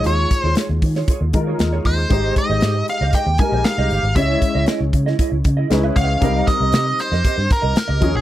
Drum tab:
HH |x-x-x-o-x-x-x-o-|x-x-x-x-x-x-x-x-|x-x-x-x-x-x-x-x-|x-x-x-x-x-x-x-x-|
SD |----o--o----o---|----o-------o---|----o--o----o---|--o-o--o----o---|
BD |--o---o-o-o---o-|o-o-----o-o-----|o-o---o-o-o---o-|o-o-----o-o---o-|